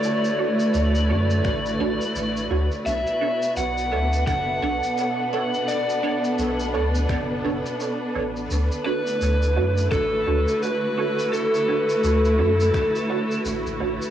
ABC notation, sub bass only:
X:1
M:4/4
L:1/16
Q:"Swing 16ths" 1/4=85
K:D
V:1 name="Sub bass" clef=bass
z4 D,,2 F,,2 A,,,2 A,,, z A,,,2 D,, z | B,,, z3 B,,,2 D,,2 F,,,2 B,,, z4 z | z4 B,,,2 D,,2 F,,,2 F,,, z3 A,,,2 | D,, z3 D,,2 F,,2 A,,,2 D,, z4 z |
z4 D,,2 F,,2 z4 A,,, A,,, A,,, z |]